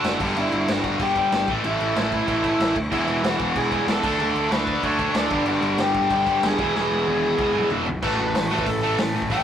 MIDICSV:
0, 0, Header, 1, 7, 480
1, 0, Start_track
1, 0, Tempo, 319489
1, 547, Time_signature, 4, 2, 24, 8
1, 14172, End_track
2, 0, Start_track
2, 0, Title_t, "Lead electric guitar"
2, 0, Program_c, 0, 29
2, 0, Note_on_c, 0, 66, 67
2, 0, Note_on_c, 0, 78, 91
2, 251, Note_off_c, 0, 66, 0
2, 257, Note_off_c, 0, 78, 0
2, 556, Note_on_c, 0, 64, 75
2, 573, Note_on_c, 0, 76, 94
2, 998, Note_off_c, 0, 64, 0
2, 1007, Note_off_c, 0, 76, 0
2, 1048, Note_on_c, 0, 66, 65
2, 1070, Note_on_c, 0, 78, 89
2, 1484, Note_off_c, 0, 66, 0
2, 1514, Note_on_c, 0, 67, 72
2, 1529, Note_off_c, 0, 78, 0
2, 1535, Note_on_c, 0, 79, 90
2, 2180, Note_off_c, 0, 67, 0
2, 2191, Note_off_c, 0, 79, 0
2, 2489, Note_on_c, 0, 64, 75
2, 2514, Note_on_c, 0, 76, 98
2, 2925, Note_off_c, 0, 64, 0
2, 2974, Note_on_c, 0, 64, 65
2, 2981, Note_off_c, 0, 76, 0
2, 2999, Note_on_c, 0, 76, 83
2, 4101, Note_off_c, 0, 64, 0
2, 4113, Note_off_c, 0, 76, 0
2, 4393, Note_on_c, 0, 64, 73
2, 4407, Note_on_c, 0, 76, 91
2, 4837, Note_off_c, 0, 64, 0
2, 4863, Note_on_c, 0, 66, 71
2, 4881, Note_on_c, 0, 78, 89
2, 4892, Note_off_c, 0, 76, 0
2, 5311, Note_off_c, 0, 66, 0
2, 5321, Note_off_c, 0, 78, 0
2, 5351, Note_on_c, 0, 68, 78
2, 5376, Note_on_c, 0, 80, 94
2, 5796, Note_off_c, 0, 68, 0
2, 5809, Note_off_c, 0, 80, 0
2, 5832, Note_on_c, 0, 69, 73
2, 5854, Note_on_c, 0, 81, 97
2, 6277, Note_off_c, 0, 69, 0
2, 6325, Note_off_c, 0, 81, 0
2, 6331, Note_on_c, 0, 69, 86
2, 6343, Note_on_c, 0, 81, 115
2, 6767, Note_off_c, 0, 69, 0
2, 6778, Note_on_c, 0, 71, 79
2, 6796, Note_on_c, 0, 83, 99
2, 6819, Note_off_c, 0, 81, 0
2, 7229, Note_off_c, 0, 71, 0
2, 7238, Note_off_c, 0, 83, 0
2, 7268, Note_on_c, 0, 73, 76
2, 7280, Note_on_c, 0, 85, 107
2, 7714, Note_off_c, 0, 73, 0
2, 7747, Note_on_c, 0, 74, 85
2, 7756, Note_off_c, 0, 85, 0
2, 7762, Note_on_c, 0, 86, 104
2, 8194, Note_off_c, 0, 74, 0
2, 8221, Note_on_c, 0, 66, 84
2, 8241, Note_on_c, 0, 78, 107
2, 8249, Note_off_c, 0, 86, 0
2, 8670, Note_off_c, 0, 66, 0
2, 8710, Note_on_c, 0, 67, 73
2, 8716, Note_off_c, 0, 78, 0
2, 8722, Note_on_c, 0, 79, 93
2, 9155, Note_off_c, 0, 67, 0
2, 9178, Note_off_c, 0, 79, 0
2, 9187, Note_on_c, 0, 67, 77
2, 9196, Note_on_c, 0, 79, 100
2, 9633, Note_off_c, 0, 67, 0
2, 9669, Note_on_c, 0, 68, 78
2, 9673, Note_off_c, 0, 79, 0
2, 9679, Note_on_c, 0, 80, 97
2, 10114, Note_off_c, 0, 68, 0
2, 10144, Note_off_c, 0, 80, 0
2, 10152, Note_on_c, 0, 68, 75
2, 10162, Note_on_c, 0, 80, 96
2, 11528, Note_off_c, 0, 68, 0
2, 11533, Note_off_c, 0, 80, 0
2, 12062, Note_on_c, 0, 71, 94
2, 12219, Note_off_c, 0, 71, 0
2, 12226, Note_on_c, 0, 66, 87
2, 12374, Note_on_c, 0, 71, 79
2, 12381, Note_off_c, 0, 66, 0
2, 12519, Note_off_c, 0, 71, 0
2, 12538, Note_on_c, 0, 71, 87
2, 12693, Note_on_c, 0, 66, 87
2, 12696, Note_off_c, 0, 71, 0
2, 12853, Note_off_c, 0, 66, 0
2, 12882, Note_on_c, 0, 71, 91
2, 13034, Note_off_c, 0, 71, 0
2, 13034, Note_on_c, 0, 69, 100
2, 13495, Note_off_c, 0, 69, 0
2, 14009, Note_on_c, 0, 79, 108
2, 14172, Note_off_c, 0, 79, 0
2, 14172, End_track
3, 0, Start_track
3, 0, Title_t, "Distorted electric guitar"
3, 0, Program_c, 1, 30
3, 0, Note_on_c, 1, 50, 88
3, 0, Note_on_c, 1, 57, 84
3, 0, Note_on_c, 1, 62, 101
3, 291, Note_off_c, 1, 50, 0
3, 304, Note_off_c, 1, 57, 0
3, 316, Note_off_c, 1, 62, 0
3, 14172, End_track
4, 0, Start_track
4, 0, Title_t, "Distorted electric guitar"
4, 0, Program_c, 2, 30
4, 5087, Note_on_c, 2, 52, 95
4, 5120, Note_on_c, 2, 47, 74
4, 5143, Note_on_c, 2, 40, 77
4, 5783, Note_off_c, 2, 40, 0
4, 5803, Note_off_c, 2, 52, 0
4, 5811, Note_off_c, 2, 47, 0
4, 6775, Note_on_c, 2, 50, 78
4, 6807, Note_on_c, 2, 57, 87
4, 6835, Note_on_c, 2, 62, 81
4, 7469, Note_off_c, 2, 62, 0
4, 7487, Note_off_c, 2, 50, 0
4, 7503, Note_off_c, 2, 57, 0
4, 8687, Note_on_c, 2, 43, 76
4, 8718, Note_on_c, 2, 50, 83
4, 8741, Note_on_c, 2, 55, 78
4, 9389, Note_off_c, 2, 55, 0
4, 9402, Note_off_c, 2, 43, 0
4, 9418, Note_off_c, 2, 50, 0
4, 10616, Note_on_c, 2, 40, 78
4, 10650, Note_on_c, 2, 47, 75
4, 10672, Note_on_c, 2, 52, 87
4, 11318, Note_off_c, 2, 52, 0
4, 11326, Note_off_c, 2, 40, 0
4, 11343, Note_off_c, 2, 47, 0
4, 13548, Note_on_c, 2, 57, 81
4, 13991, Note_off_c, 2, 57, 0
4, 14172, End_track
5, 0, Start_track
5, 0, Title_t, "Overdriven electric guitar"
5, 0, Program_c, 3, 29
5, 0, Note_on_c, 3, 50, 67
5, 0, Note_on_c, 3, 57, 72
5, 0, Note_on_c, 3, 62, 81
5, 292, Note_off_c, 3, 62, 0
5, 295, Note_off_c, 3, 50, 0
5, 295, Note_on_c, 3, 43, 91
5, 304, Note_off_c, 3, 57, 0
5, 313, Note_on_c, 3, 50, 91
5, 340, Note_on_c, 3, 55, 106
5, 1486, Note_off_c, 3, 43, 0
5, 1495, Note_off_c, 3, 50, 0
5, 1507, Note_on_c, 3, 43, 84
5, 1509, Note_off_c, 3, 55, 0
5, 1533, Note_on_c, 3, 50, 85
5, 1545, Note_on_c, 3, 55, 82
5, 1732, Note_off_c, 3, 55, 0
5, 1733, Note_off_c, 3, 43, 0
5, 1745, Note_off_c, 3, 50, 0
5, 1750, Note_on_c, 3, 55, 86
5, 1772, Note_on_c, 3, 50, 69
5, 1790, Note_on_c, 3, 43, 66
5, 2214, Note_off_c, 3, 55, 0
5, 2218, Note_off_c, 3, 50, 0
5, 2224, Note_on_c, 3, 45, 84
5, 2234, Note_off_c, 3, 43, 0
5, 2247, Note_on_c, 3, 52, 101
5, 2269, Note_on_c, 3, 57, 102
5, 3394, Note_off_c, 3, 45, 0
5, 3412, Note_on_c, 3, 45, 70
5, 3418, Note_off_c, 3, 52, 0
5, 3434, Note_off_c, 3, 57, 0
5, 3436, Note_on_c, 3, 52, 86
5, 3454, Note_on_c, 3, 57, 85
5, 3629, Note_off_c, 3, 57, 0
5, 3645, Note_off_c, 3, 45, 0
5, 3647, Note_on_c, 3, 57, 73
5, 3651, Note_off_c, 3, 52, 0
5, 3669, Note_on_c, 3, 52, 74
5, 3693, Note_on_c, 3, 45, 68
5, 4123, Note_off_c, 3, 57, 0
5, 4134, Note_off_c, 3, 52, 0
5, 4146, Note_off_c, 3, 45, 0
5, 4367, Note_on_c, 3, 40, 102
5, 4388, Note_on_c, 3, 47, 104
5, 4411, Note_on_c, 3, 52, 103
5, 5552, Note_off_c, 3, 52, 0
5, 5563, Note_off_c, 3, 40, 0
5, 5570, Note_on_c, 3, 52, 90
5, 5574, Note_off_c, 3, 47, 0
5, 5590, Note_on_c, 3, 47, 82
5, 5611, Note_on_c, 3, 40, 63
5, 5794, Note_off_c, 3, 40, 0
5, 5805, Note_off_c, 3, 52, 0
5, 5812, Note_on_c, 3, 40, 79
5, 5814, Note_off_c, 3, 47, 0
5, 5838, Note_on_c, 3, 47, 81
5, 5857, Note_on_c, 3, 52, 97
5, 6045, Note_off_c, 3, 40, 0
5, 6045, Note_off_c, 3, 47, 0
5, 6051, Note_on_c, 3, 50, 92
5, 6064, Note_off_c, 3, 52, 0
5, 6070, Note_on_c, 3, 57, 105
5, 6094, Note_on_c, 3, 62, 96
5, 7245, Note_off_c, 3, 50, 0
5, 7254, Note_off_c, 3, 57, 0
5, 7260, Note_on_c, 3, 50, 86
5, 7266, Note_off_c, 3, 62, 0
5, 7282, Note_on_c, 3, 57, 85
5, 7300, Note_on_c, 3, 62, 85
5, 7486, Note_off_c, 3, 62, 0
5, 7489, Note_off_c, 3, 50, 0
5, 7500, Note_off_c, 3, 57, 0
5, 7504, Note_on_c, 3, 62, 84
5, 7523, Note_on_c, 3, 57, 72
5, 7540, Note_on_c, 3, 50, 70
5, 7971, Note_off_c, 3, 62, 0
5, 7974, Note_on_c, 3, 43, 89
5, 7981, Note_off_c, 3, 57, 0
5, 7989, Note_off_c, 3, 50, 0
5, 8005, Note_on_c, 3, 50, 92
5, 8022, Note_on_c, 3, 55, 93
5, 9151, Note_off_c, 3, 43, 0
5, 9169, Note_on_c, 3, 43, 77
5, 9175, Note_off_c, 3, 50, 0
5, 9190, Note_off_c, 3, 55, 0
5, 9193, Note_on_c, 3, 50, 84
5, 9211, Note_on_c, 3, 55, 84
5, 9393, Note_off_c, 3, 55, 0
5, 9404, Note_off_c, 3, 43, 0
5, 9411, Note_on_c, 3, 55, 85
5, 9415, Note_off_c, 3, 50, 0
5, 9434, Note_on_c, 3, 50, 67
5, 9453, Note_on_c, 3, 43, 69
5, 9884, Note_off_c, 3, 55, 0
5, 9885, Note_off_c, 3, 43, 0
5, 9891, Note_on_c, 3, 40, 92
5, 9896, Note_off_c, 3, 50, 0
5, 9919, Note_on_c, 3, 47, 101
5, 9936, Note_on_c, 3, 52, 110
5, 11084, Note_off_c, 3, 40, 0
5, 11097, Note_off_c, 3, 47, 0
5, 11106, Note_off_c, 3, 52, 0
5, 11108, Note_on_c, 3, 40, 88
5, 11130, Note_on_c, 3, 47, 79
5, 11149, Note_on_c, 3, 52, 94
5, 11325, Note_off_c, 3, 52, 0
5, 11332, Note_off_c, 3, 40, 0
5, 11343, Note_off_c, 3, 47, 0
5, 11343, Note_on_c, 3, 52, 87
5, 11366, Note_on_c, 3, 47, 75
5, 11387, Note_on_c, 3, 40, 70
5, 11810, Note_off_c, 3, 52, 0
5, 11821, Note_off_c, 3, 47, 0
5, 11832, Note_off_c, 3, 40, 0
5, 12063, Note_on_c, 3, 45, 96
5, 12071, Note_on_c, 3, 52, 97
5, 12081, Note_on_c, 3, 57, 111
5, 12289, Note_off_c, 3, 45, 0
5, 12294, Note_off_c, 3, 52, 0
5, 12298, Note_off_c, 3, 57, 0
5, 12313, Note_on_c, 3, 45, 67
5, 12315, Note_on_c, 3, 52, 85
5, 12525, Note_off_c, 3, 45, 0
5, 12526, Note_off_c, 3, 52, 0
5, 12549, Note_on_c, 3, 45, 75
5, 12555, Note_on_c, 3, 52, 79
5, 12763, Note_off_c, 3, 45, 0
5, 12766, Note_off_c, 3, 52, 0
5, 12783, Note_on_c, 3, 45, 97
5, 12796, Note_on_c, 3, 52, 104
5, 12806, Note_on_c, 3, 57, 111
5, 13009, Note_off_c, 3, 45, 0
5, 13016, Note_off_c, 3, 52, 0
5, 13021, Note_off_c, 3, 57, 0
5, 13033, Note_on_c, 3, 52, 82
5, 13035, Note_on_c, 3, 45, 70
5, 13245, Note_off_c, 3, 52, 0
5, 13246, Note_off_c, 3, 45, 0
5, 13261, Note_on_c, 3, 45, 91
5, 13276, Note_on_c, 3, 52, 86
5, 13278, Note_on_c, 3, 57, 97
5, 13488, Note_off_c, 3, 45, 0
5, 13496, Note_off_c, 3, 52, 0
5, 13497, Note_off_c, 3, 57, 0
5, 13507, Note_on_c, 3, 45, 80
5, 13515, Note_on_c, 3, 52, 92
5, 13722, Note_off_c, 3, 45, 0
5, 13725, Note_off_c, 3, 52, 0
5, 13740, Note_on_c, 3, 45, 69
5, 13744, Note_on_c, 3, 52, 83
5, 13958, Note_off_c, 3, 45, 0
5, 13960, Note_off_c, 3, 52, 0
5, 13981, Note_on_c, 3, 45, 88
5, 13984, Note_on_c, 3, 52, 94
5, 13998, Note_on_c, 3, 57, 109
5, 14172, Note_off_c, 3, 45, 0
5, 14172, Note_off_c, 3, 52, 0
5, 14172, Note_off_c, 3, 57, 0
5, 14172, End_track
6, 0, Start_track
6, 0, Title_t, "Picked electric bass"
6, 0, Program_c, 4, 34
6, 67, Note_on_c, 4, 30, 84
6, 240, Note_off_c, 4, 30, 0
6, 299, Note_on_c, 4, 31, 90
6, 475, Note_off_c, 4, 31, 0
6, 533, Note_on_c, 4, 31, 89
6, 711, Note_off_c, 4, 31, 0
6, 782, Note_on_c, 4, 31, 88
6, 956, Note_off_c, 4, 31, 0
6, 1032, Note_on_c, 4, 31, 81
6, 1203, Note_off_c, 4, 31, 0
6, 1254, Note_on_c, 4, 31, 91
6, 1431, Note_off_c, 4, 31, 0
6, 1494, Note_on_c, 4, 31, 92
6, 1844, Note_off_c, 4, 31, 0
6, 1982, Note_on_c, 4, 31, 93
6, 2156, Note_off_c, 4, 31, 0
6, 2218, Note_on_c, 4, 33, 88
6, 2394, Note_off_c, 4, 33, 0
6, 2462, Note_on_c, 4, 33, 89
6, 2637, Note_off_c, 4, 33, 0
6, 2710, Note_on_c, 4, 33, 86
6, 2882, Note_off_c, 4, 33, 0
6, 2947, Note_on_c, 4, 33, 87
6, 3293, Note_off_c, 4, 33, 0
6, 3421, Note_on_c, 4, 33, 92
6, 3769, Note_off_c, 4, 33, 0
6, 3900, Note_on_c, 4, 33, 95
6, 4076, Note_off_c, 4, 33, 0
6, 4141, Note_on_c, 4, 38, 91
6, 4316, Note_off_c, 4, 38, 0
6, 4383, Note_on_c, 4, 28, 88
6, 4558, Note_off_c, 4, 28, 0
6, 4620, Note_on_c, 4, 28, 91
6, 4796, Note_off_c, 4, 28, 0
6, 4841, Note_on_c, 4, 28, 83
6, 5023, Note_off_c, 4, 28, 0
6, 5104, Note_on_c, 4, 28, 80
6, 5278, Note_off_c, 4, 28, 0
6, 5337, Note_on_c, 4, 28, 87
6, 5687, Note_off_c, 4, 28, 0
6, 5817, Note_on_c, 4, 28, 88
6, 5994, Note_off_c, 4, 28, 0
6, 6055, Note_on_c, 4, 38, 86
6, 6232, Note_off_c, 4, 38, 0
6, 6287, Note_on_c, 4, 38, 92
6, 6467, Note_off_c, 4, 38, 0
6, 6527, Note_on_c, 4, 38, 91
6, 6707, Note_off_c, 4, 38, 0
6, 6771, Note_on_c, 4, 38, 89
6, 7123, Note_off_c, 4, 38, 0
6, 7251, Note_on_c, 4, 38, 89
6, 7603, Note_off_c, 4, 38, 0
6, 7732, Note_on_c, 4, 38, 84
6, 7911, Note_off_c, 4, 38, 0
6, 7977, Note_on_c, 4, 31, 92
6, 8154, Note_off_c, 4, 31, 0
6, 8203, Note_on_c, 4, 31, 86
6, 8385, Note_off_c, 4, 31, 0
6, 8439, Note_on_c, 4, 31, 85
6, 8622, Note_off_c, 4, 31, 0
6, 8691, Note_on_c, 4, 31, 91
6, 8870, Note_off_c, 4, 31, 0
6, 8928, Note_on_c, 4, 31, 82
6, 9108, Note_off_c, 4, 31, 0
6, 9166, Note_on_c, 4, 31, 91
6, 9519, Note_off_c, 4, 31, 0
6, 9666, Note_on_c, 4, 31, 92
6, 9839, Note_off_c, 4, 31, 0
6, 9893, Note_on_c, 4, 28, 90
6, 10071, Note_off_c, 4, 28, 0
6, 10150, Note_on_c, 4, 28, 91
6, 10322, Note_off_c, 4, 28, 0
6, 10394, Note_on_c, 4, 28, 85
6, 10564, Note_off_c, 4, 28, 0
6, 10641, Note_on_c, 4, 28, 86
6, 10981, Note_off_c, 4, 28, 0
6, 11096, Note_on_c, 4, 28, 93
6, 11445, Note_off_c, 4, 28, 0
6, 11586, Note_on_c, 4, 28, 94
6, 11759, Note_off_c, 4, 28, 0
6, 11814, Note_on_c, 4, 35, 89
6, 11991, Note_off_c, 4, 35, 0
6, 12059, Note_on_c, 4, 33, 92
6, 12259, Note_off_c, 4, 33, 0
6, 12304, Note_on_c, 4, 33, 92
6, 12503, Note_off_c, 4, 33, 0
6, 12546, Note_on_c, 4, 33, 83
6, 12743, Note_off_c, 4, 33, 0
6, 12797, Note_on_c, 4, 33, 92
6, 12990, Note_off_c, 4, 33, 0
6, 13011, Note_on_c, 4, 33, 83
6, 13215, Note_off_c, 4, 33, 0
6, 13272, Note_on_c, 4, 33, 85
6, 13467, Note_off_c, 4, 33, 0
6, 13500, Note_on_c, 4, 33, 97
6, 13700, Note_off_c, 4, 33, 0
6, 13735, Note_on_c, 4, 45, 87
6, 13937, Note_off_c, 4, 45, 0
6, 13971, Note_on_c, 4, 33, 96
6, 14172, Note_off_c, 4, 33, 0
6, 14172, End_track
7, 0, Start_track
7, 0, Title_t, "Drums"
7, 63, Note_on_c, 9, 49, 90
7, 70, Note_on_c, 9, 38, 124
7, 213, Note_off_c, 9, 49, 0
7, 221, Note_off_c, 9, 38, 0
7, 302, Note_on_c, 9, 36, 104
7, 306, Note_on_c, 9, 49, 98
7, 452, Note_off_c, 9, 36, 0
7, 456, Note_off_c, 9, 49, 0
7, 548, Note_on_c, 9, 49, 82
7, 698, Note_off_c, 9, 49, 0
7, 782, Note_on_c, 9, 49, 62
7, 932, Note_off_c, 9, 49, 0
7, 1023, Note_on_c, 9, 49, 91
7, 1031, Note_on_c, 9, 38, 112
7, 1174, Note_off_c, 9, 49, 0
7, 1181, Note_off_c, 9, 38, 0
7, 1260, Note_on_c, 9, 49, 66
7, 1262, Note_on_c, 9, 36, 83
7, 1410, Note_off_c, 9, 49, 0
7, 1412, Note_off_c, 9, 36, 0
7, 1497, Note_on_c, 9, 49, 90
7, 1498, Note_on_c, 9, 36, 95
7, 1647, Note_off_c, 9, 49, 0
7, 1649, Note_off_c, 9, 36, 0
7, 1735, Note_on_c, 9, 49, 64
7, 1740, Note_on_c, 9, 36, 82
7, 1886, Note_off_c, 9, 49, 0
7, 1890, Note_off_c, 9, 36, 0
7, 1985, Note_on_c, 9, 49, 84
7, 1992, Note_on_c, 9, 38, 118
7, 2135, Note_off_c, 9, 49, 0
7, 2142, Note_off_c, 9, 38, 0
7, 2222, Note_on_c, 9, 49, 55
7, 2223, Note_on_c, 9, 36, 99
7, 2372, Note_off_c, 9, 49, 0
7, 2373, Note_off_c, 9, 36, 0
7, 2465, Note_on_c, 9, 49, 77
7, 2615, Note_off_c, 9, 49, 0
7, 2707, Note_on_c, 9, 49, 57
7, 2857, Note_off_c, 9, 49, 0
7, 2946, Note_on_c, 9, 49, 80
7, 2954, Note_on_c, 9, 38, 114
7, 3096, Note_off_c, 9, 49, 0
7, 3104, Note_off_c, 9, 38, 0
7, 3187, Note_on_c, 9, 36, 84
7, 3188, Note_on_c, 9, 49, 56
7, 3337, Note_off_c, 9, 36, 0
7, 3339, Note_off_c, 9, 49, 0
7, 3426, Note_on_c, 9, 36, 93
7, 3428, Note_on_c, 9, 49, 82
7, 3576, Note_off_c, 9, 36, 0
7, 3579, Note_off_c, 9, 49, 0
7, 3665, Note_on_c, 9, 36, 91
7, 3665, Note_on_c, 9, 49, 63
7, 3815, Note_off_c, 9, 36, 0
7, 3815, Note_off_c, 9, 49, 0
7, 3910, Note_on_c, 9, 49, 87
7, 3918, Note_on_c, 9, 38, 112
7, 4061, Note_off_c, 9, 49, 0
7, 4068, Note_off_c, 9, 38, 0
7, 4146, Note_on_c, 9, 36, 89
7, 4148, Note_on_c, 9, 49, 62
7, 4297, Note_off_c, 9, 36, 0
7, 4299, Note_off_c, 9, 49, 0
7, 4386, Note_on_c, 9, 36, 97
7, 4390, Note_on_c, 9, 49, 82
7, 4536, Note_off_c, 9, 36, 0
7, 4541, Note_off_c, 9, 49, 0
7, 4624, Note_on_c, 9, 49, 62
7, 4775, Note_off_c, 9, 49, 0
7, 4871, Note_on_c, 9, 49, 91
7, 4878, Note_on_c, 9, 38, 110
7, 5021, Note_off_c, 9, 49, 0
7, 5029, Note_off_c, 9, 38, 0
7, 5101, Note_on_c, 9, 49, 63
7, 5104, Note_on_c, 9, 36, 89
7, 5252, Note_off_c, 9, 49, 0
7, 5254, Note_off_c, 9, 36, 0
7, 5344, Note_on_c, 9, 49, 89
7, 5346, Note_on_c, 9, 36, 92
7, 5494, Note_off_c, 9, 49, 0
7, 5496, Note_off_c, 9, 36, 0
7, 5586, Note_on_c, 9, 36, 84
7, 5592, Note_on_c, 9, 49, 65
7, 5736, Note_off_c, 9, 36, 0
7, 5742, Note_off_c, 9, 49, 0
7, 5829, Note_on_c, 9, 49, 93
7, 5836, Note_on_c, 9, 38, 125
7, 5979, Note_off_c, 9, 49, 0
7, 5986, Note_off_c, 9, 38, 0
7, 6062, Note_on_c, 9, 36, 105
7, 6065, Note_on_c, 9, 49, 101
7, 6213, Note_off_c, 9, 36, 0
7, 6215, Note_off_c, 9, 49, 0
7, 6305, Note_on_c, 9, 49, 75
7, 6456, Note_off_c, 9, 49, 0
7, 6545, Note_on_c, 9, 49, 60
7, 6695, Note_off_c, 9, 49, 0
7, 6785, Note_on_c, 9, 49, 80
7, 6793, Note_on_c, 9, 38, 110
7, 6935, Note_off_c, 9, 49, 0
7, 6943, Note_off_c, 9, 38, 0
7, 7020, Note_on_c, 9, 36, 84
7, 7026, Note_on_c, 9, 49, 54
7, 7170, Note_off_c, 9, 36, 0
7, 7176, Note_off_c, 9, 49, 0
7, 7261, Note_on_c, 9, 36, 93
7, 7262, Note_on_c, 9, 49, 77
7, 7411, Note_off_c, 9, 36, 0
7, 7413, Note_off_c, 9, 49, 0
7, 7498, Note_on_c, 9, 36, 85
7, 7501, Note_on_c, 9, 49, 57
7, 7649, Note_off_c, 9, 36, 0
7, 7652, Note_off_c, 9, 49, 0
7, 7730, Note_on_c, 9, 49, 81
7, 7737, Note_on_c, 9, 38, 121
7, 7880, Note_off_c, 9, 49, 0
7, 7887, Note_off_c, 9, 38, 0
7, 7971, Note_on_c, 9, 49, 58
7, 7974, Note_on_c, 9, 36, 109
7, 8122, Note_off_c, 9, 49, 0
7, 8124, Note_off_c, 9, 36, 0
7, 8199, Note_on_c, 9, 49, 78
7, 8349, Note_off_c, 9, 49, 0
7, 8445, Note_on_c, 9, 49, 62
7, 8595, Note_off_c, 9, 49, 0
7, 8685, Note_on_c, 9, 49, 84
7, 8693, Note_on_c, 9, 38, 114
7, 8835, Note_off_c, 9, 49, 0
7, 8843, Note_off_c, 9, 38, 0
7, 8929, Note_on_c, 9, 49, 62
7, 8934, Note_on_c, 9, 36, 92
7, 9079, Note_off_c, 9, 49, 0
7, 9085, Note_off_c, 9, 36, 0
7, 9169, Note_on_c, 9, 49, 85
7, 9174, Note_on_c, 9, 36, 99
7, 9319, Note_off_c, 9, 49, 0
7, 9324, Note_off_c, 9, 36, 0
7, 9415, Note_on_c, 9, 36, 87
7, 9418, Note_on_c, 9, 49, 66
7, 9566, Note_off_c, 9, 36, 0
7, 9569, Note_off_c, 9, 49, 0
7, 9658, Note_on_c, 9, 49, 88
7, 9666, Note_on_c, 9, 38, 124
7, 9808, Note_off_c, 9, 49, 0
7, 9816, Note_off_c, 9, 38, 0
7, 9898, Note_on_c, 9, 49, 62
7, 9899, Note_on_c, 9, 36, 104
7, 10048, Note_off_c, 9, 49, 0
7, 10049, Note_off_c, 9, 36, 0
7, 10148, Note_on_c, 9, 38, 66
7, 10298, Note_off_c, 9, 38, 0
7, 10612, Note_on_c, 9, 48, 74
7, 10762, Note_off_c, 9, 48, 0
7, 11092, Note_on_c, 9, 47, 88
7, 11096, Note_on_c, 9, 36, 118
7, 11242, Note_off_c, 9, 47, 0
7, 11246, Note_off_c, 9, 36, 0
7, 11332, Note_on_c, 9, 45, 85
7, 11482, Note_off_c, 9, 45, 0
7, 11572, Note_on_c, 9, 43, 108
7, 11722, Note_off_c, 9, 43, 0
7, 11814, Note_on_c, 9, 43, 89
7, 11964, Note_off_c, 9, 43, 0
7, 12057, Note_on_c, 9, 57, 110
7, 12059, Note_on_c, 9, 36, 107
7, 12207, Note_off_c, 9, 57, 0
7, 12209, Note_off_c, 9, 36, 0
7, 12540, Note_on_c, 9, 46, 68
7, 12548, Note_on_c, 9, 38, 114
7, 12690, Note_off_c, 9, 46, 0
7, 12698, Note_off_c, 9, 38, 0
7, 12899, Note_on_c, 9, 36, 85
7, 13017, Note_off_c, 9, 36, 0
7, 13017, Note_on_c, 9, 36, 102
7, 13017, Note_on_c, 9, 46, 68
7, 13167, Note_off_c, 9, 36, 0
7, 13167, Note_off_c, 9, 46, 0
7, 13495, Note_on_c, 9, 46, 73
7, 13502, Note_on_c, 9, 38, 117
7, 13645, Note_off_c, 9, 46, 0
7, 13652, Note_off_c, 9, 38, 0
7, 13853, Note_on_c, 9, 36, 86
7, 13971, Note_on_c, 9, 46, 63
7, 13973, Note_off_c, 9, 36, 0
7, 13973, Note_on_c, 9, 36, 96
7, 14121, Note_off_c, 9, 46, 0
7, 14123, Note_off_c, 9, 36, 0
7, 14172, End_track
0, 0, End_of_file